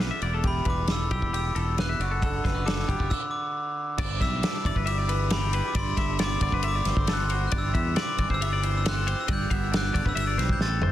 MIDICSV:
0, 0, Header, 1, 6, 480
1, 0, Start_track
1, 0, Tempo, 441826
1, 481, Time_signature, 4, 2, 24, 8
1, 11861, End_track
2, 0, Start_track
2, 0, Title_t, "Glockenspiel"
2, 0, Program_c, 0, 9
2, 516, Note_on_c, 0, 83, 76
2, 723, Note_off_c, 0, 83, 0
2, 757, Note_on_c, 0, 86, 78
2, 857, Note_off_c, 0, 86, 0
2, 995, Note_on_c, 0, 88, 83
2, 1216, Note_off_c, 0, 88, 0
2, 1229, Note_on_c, 0, 88, 77
2, 1464, Note_off_c, 0, 88, 0
2, 1477, Note_on_c, 0, 88, 85
2, 1910, Note_off_c, 0, 88, 0
2, 1957, Note_on_c, 0, 90, 95
2, 2410, Note_on_c, 0, 88, 86
2, 2437, Note_off_c, 0, 90, 0
2, 2884, Note_on_c, 0, 86, 79
2, 2905, Note_off_c, 0, 88, 0
2, 3370, Note_on_c, 0, 88, 79
2, 3383, Note_off_c, 0, 86, 0
2, 3595, Note_on_c, 0, 86, 70
2, 3618, Note_off_c, 0, 88, 0
2, 4050, Note_off_c, 0, 86, 0
2, 4587, Note_on_c, 0, 88, 80
2, 5300, Note_on_c, 0, 86, 77
2, 5322, Note_off_c, 0, 88, 0
2, 5785, Note_on_c, 0, 83, 76
2, 5791, Note_off_c, 0, 86, 0
2, 6167, Note_on_c, 0, 86, 55
2, 6195, Note_off_c, 0, 83, 0
2, 6249, Note_off_c, 0, 86, 0
2, 6289, Note_on_c, 0, 84, 81
2, 6766, Note_off_c, 0, 84, 0
2, 6782, Note_on_c, 0, 86, 83
2, 7244, Note_off_c, 0, 86, 0
2, 7257, Note_on_c, 0, 86, 82
2, 7728, Note_off_c, 0, 86, 0
2, 7750, Note_on_c, 0, 90, 91
2, 8058, Note_off_c, 0, 90, 0
2, 8119, Note_on_c, 0, 90, 63
2, 8184, Note_off_c, 0, 90, 0
2, 8238, Note_on_c, 0, 88, 94
2, 8697, Note_off_c, 0, 88, 0
2, 8712, Note_on_c, 0, 86, 85
2, 9050, Note_off_c, 0, 86, 0
2, 9064, Note_on_c, 0, 88, 94
2, 9519, Note_off_c, 0, 88, 0
2, 9532, Note_on_c, 0, 88, 78
2, 9633, Note_off_c, 0, 88, 0
2, 9653, Note_on_c, 0, 90, 89
2, 9966, Note_off_c, 0, 90, 0
2, 10000, Note_on_c, 0, 88, 75
2, 10047, Note_off_c, 0, 88, 0
2, 10136, Note_on_c, 0, 91, 98
2, 10603, Note_off_c, 0, 91, 0
2, 10609, Note_on_c, 0, 90, 96
2, 10956, Note_off_c, 0, 90, 0
2, 10957, Note_on_c, 0, 88, 84
2, 11063, Note_off_c, 0, 88, 0
2, 11087, Note_on_c, 0, 88, 93
2, 11433, Note_off_c, 0, 88, 0
2, 11434, Note_on_c, 0, 91, 86
2, 11536, Note_on_c, 0, 93, 92
2, 11540, Note_off_c, 0, 91, 0
2, 11861, Note_off_c, 0, 93, 0
2, 11861, End_track
3, 0, Start_track
3, 0, Title_t, "Clean electric guitar"
3, 0, Program_c, 1, 27
3, 0, Note_on_c, 1, 71, 70
3, 118, Note_off_c, 1, 71, 0
3, 118, Note_on_c, 1, 76, 59
3, 239, Note_off_c, 1, 76, 0
3, 246, Note_on_c, 1, 74, 69
3, 363, Note_off_c, 1, 74, 0
3, 373, Note_on_c, 1, 69, 65
3, 483, Note_on_c, 1, 67, 85
3, 487, Note_off_c, 1, 69, 0
3, 711, Note_on_c, 1, 71, 62
3, 723, Note_off_c, 1, 67, 0
3, 960, Note_off_c, 1, 71, 0
3, 960, Note_on_c, 1, 69, 66
3, 1202, Note_off_c, 1, 69, 0
3, 1208, Note_on_c, 1, 67, 69
3, 1436, Note_off_c, 1, 67, 0
3, 1449, Note_on_c, 1, 67, 73
3, 1686, Note_off_c, 1, 67, 0
3, 1686, Note_on_c, 1, 69, 65
3, 1926, Note_off_c, 1, 69, 0
3, 1935, Note_on_c, 1, 71, 67
3, 2051, Note_off_c, 1, 71, 0
3, 2055, Note_on_c, 1, 76, 61
3, 2179, Note_off_c, 1, 76, 0
3, 2179, Note_on_c, 1, 74, 67
3, 2293, Note_off_c, 1, 74, 0
3, 2296, Note_on_c, 1, 69, 59
3, 2412, Note_off_c, 1, 69, 0
3, 2425, Note_on_c, 1, 69, 82
3, 2652, Note_off_c, 1, 69, 0
3, 2652, Note_on_c, 1, 71, 63
3, 2890, Note_off_c, 1, 71, 0
3, 2894, Note_on_c, 1, 69, 67
3, 3132, Note_off_c, 1, 69, 0
3, 3132, Note_on_c, 1, 67, 66
3, 3372, Note_off_c, 1, 67, 0
3, 4338, Note_on_c, 1, 74, 93
3, 4571, Note_off_c, 1, 74, 0
3, 4576, Note_on_c, 1, 76, 69
3, 4825, Note_off_c, 1, 76, 0
3, 4825, Note_on_c, 1, 74, 74
3, 5052, Note_off_c, 1, 74, 0
3, 5065, Note_on_c, 1, 74, 76
3, 5177, Note_on_c, 1, 71, 59
3, 5180, Note_off_c, 1, 74, 0
3, 5276, Note_on_c, 1, 76, 77
3, 5295, Note_off_c, 1, 71, 0
3, 5410, Note_off_c, 1, 76, 0
3, 5410, Note_on_c, 1, 74, 69
3, 5528, Note_on_c, 1, 71, 72
3, 5532, Note_off_c, 1, 74, 0
3, 5772, Note_off_c, 1, 71, 0
3, 5772, Note_on_c, 1, 67, 78
3, 6014, Note_off_c, 1, 67, 0
3, 6014, Note_on_c, 1, 71, 73
3, 6254, Note_off_c, 1, 71, 0
3, 6257, Note_on_c, 1, 74, 91
3, 6489, Note_off_c, 1, 74, 0
3, 6493, Note_on_c, 1, 76, 71
3, 6730, Note_off_c, 1, 76, 0
3, 6734, Note_on_c, 1, 74, 82
3, 6966, Note_off_c, 1, 74, 0
3, 6979, Note_on_c, 1, 74, 72
3, 7096, Note_off_c, 1, 74, 0
3, 7101, Note_on_c, 1, 71, 64
3, 7213, Note_on_c, 1, 76, 77
3, 7217, Note_off_c, 1, 71, 0
3, 7339, Note_off_c, 1, 76, 0
3, 7339, Note_on_c, 1, 74, 69
3, 7460, Note_off_c, 1, 74, 0
3, 7460, Note_on_c, 1, 72, 76
3, 7696, Note_off_c, 1, 72, 0
3, 7702, Note_on_c, 1, 69, 80
3, 7932, Note_off_c, 1, 69, 0
3, 7932, Note_on_c, 1, 72, 75
3, 8171, Note_on_c, 1, 74, 91
3, 8172, Note_off_c, 1, 72, 0
3, 8404, Note_off_c, 1, 74, 0
3, 8408, Note_on_c, 1, 76, 73
3, 8647, Note_off_c, 1, 76, 0
3, 8652, Note_on_c, 1, 74, 74
3, 8883, Note_off_c, 1, 74, 0
3, 8896, Note_on_c, 1, 74, 78
3, 9013, Note_off_c, 1, 74, 0
3, 9021, Note_on_c, 1, 72, 67
3, 9140, Note_off_c, 1, 72, 0
3, 9140, Note_on_c, 1, 76, 76
3, 9255, Note_off_c, 1, 76, 0
3, 9264, Note_on_c, 1, 74, 73
3, 9381, Note_off_c, 1, 74, 0
3, 9381, Note_on_c, 1, 72, 70
3, 9610, Note_off_c, 1, 72, 0
3, 9610, Note_on_c, 1, 69, 70
3, 9853, Note_off_c, 1, 69, 0
3, 9853, Note_on_c, 1, 72, 67
3, 10082, Note_off_c, 1, 72, 0
3, 10082, Note_on_c, 1, 74, 89
3, 10324, Note_off_c, 1, 74, 0
3, 10324, Note_on_c, 1, 76, 72
3, 10562, Note_off_c, 1, 76, 0
3, 10562, Note_on_c, 1, 74, 81
3, 10788, Note_off_c, 1, 74, 0
3, 10801, Note_on_c, 1, 74, 74
3, 10922, Note_off_c, 1, 74, 0
3, 10922, Note_on_c, 1, 71, 63
3, 11028, Note_off_c, 1, 71, 0
3, 11032, Note_on_c, 1, 76, 77
3, 11155, Note_off_c, 1, 76, 0
3, 11160, Note_on_c, 1, 74, 71
3, 11276, Note_on_c, 1, 72, 72
3, 11280, Note_off_c, 1, 74, 0
3, 11525, Note_off_c, 1, 72, 0
3, 11525, Note_on_c, 1, 69, 75
3, 11761, Note_off_c, 1, 69, 0
3, 11766, Note_on_c, 1, 72, 71
3, 11861, Note_off_c, 1, 72, 0
3, 11861, End_track
4, 0, Start_track
4, 0, Title_t, "Clean electric guitar"
4, 0, Program_c, 2, 27
4, 0, Note_on_c, 2, 41, 54
4, 0, Note_on_c, 2, 50, 47
4, 0, Note_on_c, 2, 57, 55
4, 0, Note_on_c, 2, 62, 55
4, 0, Note_on_c, 2, 65, 59
4, 211, Note_off_c, 2, 65, 0
4, 217, Note_off_c, 2, 57, 0
4, 238, Note_off_c, 2, 41, 0
4, 247, Note_on_c, 2, 40, 61
4, 257, Note_on_c, 2, 64, 51
4, 281, Note_off_c, 2, 62, 0
4, 360, Note_off_c, 2, 64, 0
4, 360, Note_on_c, 2, 67, 50
4, 476, Note_off_c, 2, 50, 0
4, 483, Note_on_c, 2, 52, 62
4, 724, Note_on_c, 2, 55, 55
4, 947, Note_off_c, 2, 52, 0
4, 960, Note_on_c, 2, 52, 58
4, 1202, Note_off_c, 2, 55, 0
4, 1215, Note_on_c, 2, 55, 52
4, 1444, Note_off_c, 2, 67, 0
4, 1459, Note_on_c, 2, 67, 63
4, 1909, Note_off_c, 2, 40, 0
4, 1922, Note_on_c, 2, 40, 59
4, 2137, Note_off_c, 2, 52, 0
4, 2145, Note_off_c, 2, 67, 0
4, 2165, Note_off_c, 2, 40, 0
4, 2171, Note_on_c, 2, 42, 64
4, 2173, Note_off_c, 2, 55, 0
4, 2181, Note_on_c, 2, 66, 58
4, 2418, Note_on_c, 2, 50, 59
4, 2649, Note_on_c, 2, 55, 52
4, 2765, Note_off_c, 2, 55, 0
4, 2765, Note_on_c, 2, 57, 45
4, 2874, Note_off_c, 2, 50, 0
4, 2887, Note_on_c, 2, 50, 58
4, 3106, Note_off_c, 2, 57, 0
4, 3110, Note_on_c, 2, 55, 47
4, 3246, Note_off_c, 2, 55, 0
4, 3246, Note_on_c, 2, 57, 43
4, 3344, Note_off_c, 2, 42, 0
4, 3349, Note_off_c, 2, 66, 0
4, 3368, Note_off_c, 2, 57, 0
4, 4321, Note_on_c, 2, 43, 72
4, 4564, Note_on_c, 2, 55, 57
4, 4810, Note_on_c, 2, 62, 58
4, 5032, Note_off_c, 2, 50, 0
4, 5036, Note_on_c, 2, 52, 52
4, 5265, Note_off_c, 2, 55, 0
4, 5278, Note_on_c, 2, 55, 64
4, 5498, Note_off_c, 2, 52, 0
4, 5511, Note_on_c, 2, 52, 64
4, 5755, Note_off_c, 2, 62, 0
4, 5768, Note_on_c, 2, 62, 58
4, 6006, Note_on_c, 2, 67, 62
4, 6214, Note_off_c, 2, 52, 0
4, 6219, Note_off_c, 2, 43, 0
4, 6221, Note_off_c, 2, 67, 0
4, 6222, Note_off_c, 2, 62, 0
4, 6237, Note_on_c, 2, 43, 70
4, 6246, Note_off_c, 2, 55, 0
4, 6478, Note_on_c, 2, 57, 55
4, 6728, Note_on_c, 2, 60, 65
4, 6953, Note_on_c, 2, 50, 57
4, 7195, Note_off_c, 2, 57, 0
4, 7200, Note_on_c, 2, 57, 58
4, 7423, Note_off_c, 2, 50, 0
4, 7436, Note_on_c, 2, 50, 68
4, 7677, Note_off_c, 2, 60, 0
4, 7690, Note_on_c, 2, 60, 58
4, 7940, Note_on_c, 2, 66, 68
4, 8134, Note_off_c, 2, 43, 0
4, 8136, Note_off_c, 2, 57, 0
4, 8142, Note_off_c, 2, 60, 0
4, 8147, Note_off_c, 2, 66, 0
4, 8163, Note_off_c, 2, 50, 0
4, 8167, Note_on_c, 2, 43, 77
4, 8172, Note_on_c, 2, 52, 62
4, 8181, Note_on_c, 2, 55, 68
4, 8190, Note_on_c, 2, 60, 66
4, 8197, Note_on_c, 2, 67, 61
4, 8407, Note_off_c, 2, 55, 0
4, 8411, Note_on_c, 2, 55, 59
4, 8618, Note_off_c, 2, 60, 0
4, 8631, Note_on_c, 2, 60, 60
4, 8867, Note_off_c, 2, 52, 0
4, 8880, Note_on_c, 2, 52, 59
4, 9123, Note_off_c, 2, 55, 0
4, 9127, Note_on_c, 2, 55, 60
4, 9349, Note_off_c, 2, 52, 0
4, 9362, Note_on_c, 2, 52, 70
4, 9599, Note_off_c, 2, 60, 0
4, 9623, Note_on_c, 2, 60, 61
4, 9845, Note_off_c, 2, 67, 0
4, 9849, Note_on_c, 2, 67, 66
4, 10054, Note_off_c, 2, 52, 0
4, 10065, Note_off_c, 2, 60, 0
4, 10077, Note_off_c, 2, 43, 0
4, 10081, Note_on_c, 2, 43, 70
4, 10318, Note_off_c, 2, 55, 0
4, 10323, Note_on_c, 2, 59, 53
4, 10553, Note_on_c, 2, 62, 63
4, 10803, Note_on_c, 2, 50, 57
4, 11008, Note_off_c, 2, 62, 0
4, 11013, Note_off_c, 2, 59, 0
4, 11024, Note_off_c, 2, 43, 0
4, 11028, Note_on_c, 2, 43, 73
4, 11043, Note_off_c, 2, 50, 0
4, 11302, Note_on_c, 2, 55, 63
4, 11517, Note_on_c, 2, 60, 59
4, 11756, Note_on_c, 2, 52, 61
4, 11861, Note_off_c, 2, 43, 0
4, 11861, Note_off_c, 2, 52, 0
4, 11861, Note_off_c, 2, 55, 0
4, 11861, Note_off_c, 2, 60, 0
4, 11861, Note_off_c, 2, 67, 0
4, 11861, End_track
5, 0, Start_track
5, 0, Title_t, "Fingered electric bass"
5, 0, Program_c, 3, 33
5, 240, Note_on_c, 3, 28, 81
5, 688, Note_off_c, 3, 28, 0
5, 713, Note_on_c, 3, 28, 74
5, 1166, Note_off_c, 3, 28, 0
5, 1207, Note_on_c, 3, 35, 85
5, 1317, Note_off_c, 3, 35, 0
5, 1325, Note_on_c, 3, 28, 73
5, 1661, Note_off_c, 3, 28, 0
5, 1690, Note_on_c, 3, 28, 73
5, 2137, Note_off_c, 3, 28, 0
5, 2168, Note_on_c, 3, 30, 81
5, 2616, Note_off_c, 3, 30, 0
5, 2658, Note_on_c, 3, 30, 69
5, 3102, Note_off_c, 3, 30, 0
5, 3134, Note_on_c, 3, 30, 83
5, 3244, Note_off_c, 3, 30, 0
5, 3260, Note_on_c, 3, 30, 72
5, 3367, Note_off_c, 3, 30, 0
5, 4329, Note_on_c, 3, 31, 98
5, 4555, Note_off_c, 3, 31, 0
5, 4568, Note_on_c, 3, 35, 79
5, 4794, Note_off_c, 3, 35, 0
5, 5055, Note_on_c, 3, 31, 91
5, 5161, Note_off_c, 3, 31, 0
5, 5167, Note_on_c, 3, 31, 86
5, 6087, Note_off_c, 3, 31, 0
5, 6244, Note_on_c, 3, 31, 97
5, 6472, Note_off_c, 3, 31, 0
5, 6490, Note_on_c, 3, 31, 90
5, 6939, Note_off_c, 3, 31, 0
5, 6965, Note_on_c, 3, 31, 91
5, 7081, Note_off_c, 3, 31, 0
5, 7089, Note_on_c, 3, 31, 92
5, 7426, Note_off_c, 3, 31, 0
5, 7447, Note_on_c, 3, 31, 87
5, 7561, Note_off_c, 3, 31, 0
5, 7567, Note_on_c, 3, 31, 84
5, 8127, Note_off_c, 3, 31, 0
5, 8173, Note_on_c, 3, 31, 99
5, 8396, Note_off_c, 3, 31, 0
5, 8414, Note_on_c, 3, 40, 78
5, 8636, Note_off_c, 3, 40, 0
5, 8891, Note_on_c, 3, 31, 93
5, 9002, Note_off_c, 3, 31, 0
5, 9012, Note_on_c, 3, 31, 86
5, 9925, Note_off_c, 3, 31, 0
5, 10092, Note_on_c, 3, 31, 107
5, 10312, Note_off_c, 3, 31, 0
5, 10325, Note_on_c, 3, 31, 83
5, 10771, Note_off_c, 3, 31, 0
5, 10812, Note_on_c, 3, 31, 96
5, 10919, Note_off_c, 3, 31, 0
5, 10924, Note_on_c, 3, 31, 96
5, 11032, Note_off_c, 3, 31, 0
5, 11038, Note_on_c, 3, 31, 87
5, 11263, Note_off_c, 3, 31, 0
5, 11269, Note_on_c, 3, 35, 76
5, 11490, Note_off_c, 3, 35, 0
5, 11507, Note_on_c, 3, 33, 81
5, 11728, Note_off_c, 3, 33, 0
5, 11755, Note_on_c, 3, 31, 76
5, 11861, Note_off_c, 3, 31, 0
5, 11861, End_track
6, 0, Start_track
6, 0, Title_t, "Drums"
6, 0, Note_on_c, 9, 38, 101
6, 105, Note_off_c, 9, 38, 0
6, 235, Note_on_c, 9, 51, 51
6, 344, Note_off_c, 9, 51, 0
6, 473, Note_on_c, 9, 51, 68
6, 477, Note_on_c, 9, 36, 97
6, 582, Note_off_c, 9, 51, 0
6, 586, Note_off_c, 9, 36, 0
6, 707, Note_on_c, 9, 51, 54
6, 717, Note_on_c, 9, 36, 75
6, 816, Note_off_c, 9, 51, 0
6, 826, Note_off_c, 9, 36, 0
6, 951, Note_on_c, 9, 51, 66
6, 959, Note_on_c, 9, 38, 93
6, 1060, Note_off_c, 9, 51, 0
6, 1067, Note_off_c, 9, 38, 0
6, 1204, Note_on_c, 9, 51, 51
6, 1206, Note_on_c, 9, 36, 61
6, 1313, Note_off_c, 9, 51, 0
6, 1315, Note_off_c, 9, 36, 0
6, 1329, Note_on_c, 9, 36, 62
6, 1437, Note_off_c, 9, 36, 0
6, 1457, Note_on_c, 9, 51, 70
6, 1565, Note_off_c, 9, 51, 0
6, 1692, Note_on_c, 9, 51, 52
6, 1801, Note_off_c, 9, 51, 0
6, 1934, Note_on_c, 9, 51, 71
6, 1942, Note_on_c, 9, 38, 95
6, 2043, Note_off_c, 9, 51, 0
6, 2050, Note_off_c, 9, 38, 0
6, 2179, Note_on_c, 9, 51, 51
6, 2288, Note_off_c, 9, 51, 0
6, 2417, Note_on_c, 9, 36, 98
6, 2421, Note_on_c, 9, 51, 70
6, 2525, Note_off_c, 9, 36, 0
6, 2530, Note_off_c, 9, 51, 0
6, 2659, Note_on_c, 9, 36, 72
6, 2668, Note_on_c, 9, 51, 57
6, 2676, Note_on_c, 9, 38, 31
6, 2768, Note_off_c, 9, 36, 0
6, 2777, Note_off_c, 9, 51, 0
6, 2784, Note_off_c, 9, 38, 0
6, 2906, Note_on_c, 9, 51, 72
6, 2914, Note_on_c, 9, 38, 92
6, 3015, Note_off_c, 9, 51, 0
6, 3022, Note_off_c, 9, 38, 0
6, 3030, Note_on_c, 9, 38, 30
6, 3137, Note_on_c, 9, 36, 67
6, 3139, Note_off_c, 9, 38, 0
6, 3144, Note_on_c, 9, 51, 54
6, 3245, Note_off_c, 9, 36, 0
6, 3253, Note_off_c, 9, 51, 0
6, 3259, Note_on_c, 9, 36, 65
6, 3368, Note_off_c, 9, 36, 0
6, 3379, Note_on_c, 9, 36, 81
6, 3380, Note_on_c, 9, 49, 73
6, 3488, Note_off_c, 9, 36, 0
6, 3489, Note_off_c, 9, 49, 0
6, 4326, Note_on_c, 9, 49, 103
6, 4329, Note_on_c, 9, 36, 96
6, 4435, Note_off_c, 9, 49, 0
6, 4438, Note_off_c, 9, 36, 0
6, 4572, Note_on_c, 9, 36, 81
6, 4577, Note_on_c, 9, 51, 63
6, 4585, Note_on_c, 9, 38, 33
6, 4681, Note_off_c, 9, 36, 0
6, 4686, Note_off_c, 9, 51, 0
6, 4693, Note_off_c, 9, 38, 0
6, 4814, Note_on_c, 9, 51, 78
6, 4822, Note_on_c, 9, 38, 102
6, 4923, Note_off_c, 9, 51, 0
6, 4931, Note_off_c, 9, 38, 0
6, 5052, Note_on_c, 9, 36, 73
6, 5060, Note_on_c, 9, 51, 65
6, 5161, Note_off_c, 9, 36, 0
6, 5169, Note_off_c, 9, 51, 0
6, 5171, Note_on_c, 9, 36, 64
6, 5280, Note_off_c, 9, 36, 0
6, 5289, Note_on_c, 9, 51, 81
6, 5398, Note_off_c, 9, 51, 0
6, 5530, Note_on_c, 9, 51, 69
6, 5639, Note_off_c, 9, 51, 0
6, 5762, Note_on_c, 9, 51, 87
6, 5770, Note_on_c, 9, 38, 108
6, 5871, Note_off_c, 9, 51, 0
6, 5879, Note_off_c, 9, 38, 0
6, 6007, Note_on_c, 9, 51, 70
6, 6116, Note_off_c, 9, 51, 0
6, 6244, Note_on_c, 9, 51, 92
6, 6247, Note_on_c, 9, 36, 104
6, 6353, Note_off_c, 9, 51, 0
6, 6356, Note_off_c, 9, 36, 0
6, 6488, Note_on_c, 9, 36, 82
6, 6489, Note_on_c, 9, 51, 74
6, 6497, Note_on_c, 9, 38, 32
6, 6596, Note_off_c, 9, 36, 0
6, 6598, Note_off_c, 9, 51, 0
6, 6606, Note_off_c, 9, 38, 0
6, 6724, Note_on_c, 9, 51, 97
6, 6732, Note_on_c, 9, 38, 101
6, 6833, Note_off_c, 9, 51, 0
6, 6840, Note_off_c, 9, 38, 0
6, 6962, Note_on_c, 9, 51, 67
6, 6966, Note_on_c, 9, 36, 73
6, 7071, Note_off_c, 9, 51, 0
6, 7074, Note_off_c, 9, 36, 0
6, 7087, Note_on_c, 9, 36, 69
6, 7196, Note_off_c, 9, 36, 0
6, 7199, Note_on_c, 9, 51, 89
6, 7308, Note_off_c, 9, 51, 0
6, 7444, Note_on_c, 9, 51, 70
6, 7452, Note_on_c, 9, 38, 33
6, 7553, Note_off_c, 9, 51, 0
6, 7561, Note_off_c, 9, 38, 0
6, 7569, Note_on_c, 9, 36, 75
6, 7678, Note_off_c, 9, 36, 0
6, 7685, Note_on_c, 9, 51, 89
6, 7692, Note_on_c, 9, 38, 100
6, 7793, Note_off_c, 9, 51, 0
6, 7801, Note_off_c, 9, 38, 0
6, 7926, Note_on_c, 9, 51, 64
6, 8035, Note_off_c, 9, 51, 0
6, 8165, Note_on_c, 9, 51, 85
6, 8174, Note_on_c, 9, 36, 107
6, 8273, Note_off_c, 9, 51, 0
6, 8282, Note_off_c, 9, 36, 0
6, 8416, Note_on_c, 9, 36, 78
6, 8418, Note_on_c, 9, 51, 64
6, 8525, Note_off_c, 9, 36, 0
6, 8527, Note_off_c, 9, 51, 0
6, 8648, Note_on_c, 9, 51, 80
6, 8656, Note_on_c, 9, 38, 106
6, 8757, Note_off_c, 9, 51, 0
6, 8765, Note_off_c, 9, 38, 0
6, 8891, Note_on_c, 9, 51, 63
6, 8897, Note_on_c, 9, 36, 72
6, 9000, Note_off_c, 9, 51, 0
6, 9005, Note_off_c, 9, 36, 0
6, 9018, Note_on_c, 9, 36, 65
6, 9127, Note_off_c, 9, 36, 0
6, 9146, Note_on_c, 9, 51, 90
6, 9255, Note_off_c, 9, 51, 0
6, 9380, Note_on_c, 9, 51, 66
6, 9489, Note_off_c, 9, 51, 0
6, 9621, Note_on_c, 9, 51, 90
6, 9629, Note_on_c, 9, 38, 101
6, 9730, Note_off_c, 9, 51, 0
6, 9737, Note_off_c, 9, 38, 0
6, 9860, Note_on_c, 9, 51, 63
6, 9969, Note_off_c, 9, 51, 0
6, 10084, Note_on_c, 9, 51, 88
6, 10091, Note_on_c, 9, 36, 98
6, 10193, Note_off_c, 9, 51, 0
6, 10200, Note_off_c, 9, 36, 0
6, 10330, Note_on_c, 9, 36, 78
6, 10331, Note_on_c, 9, 51, 70
6, 10439, Note_off_c, 9, 36, 0
6, 10440, Note_off_c, 9, 51, 0
6, 10576, Note_on_c, 9, 51, 85
6, 10583, Note_on_c, 9, 38, 112
6, 10684, Note_off_c, 9, 51, 0
6, 10692, Note_off_c, 9, 38, 0
6, 10808, Note_on_c, 9, 36, 76
6, 10814, Note_on_c, 9, 51, 70
6, 10917, Note_off_c, 9, 36, 0
6, 10923, Note_off_c, 9, 51, 0
6, 10926, Note_on_c, 9, 36, 76
6, 11035, Note_off_c, 9, 36, 0
6, 11047, Note_on_c, 9, 51, 87
6, 11156, Note_off_c, 9, 51, 0
6, 11288, Note_on_c, 9, 51, 68
6, 11296, Note_on_c, 9, 38, 31
6, 11397, Note_off_c, 9, 51, 0
6, 11401, Note_on_c, 9, 36, 81
6, 11405, Note_off_c, 9, 38, 0
6, 11510, Note_off_c, 9, 36, 0
6, 11522, Note_on_c, 9, 38, 62
6, 11631, Note_off_c, 9, 38, 0
6, 11751, Note_on_c, 9, 45, 87
6, 11860, Note_off_c, 9, 45, 0
6, 11861, End_track
0, 0, End_of_file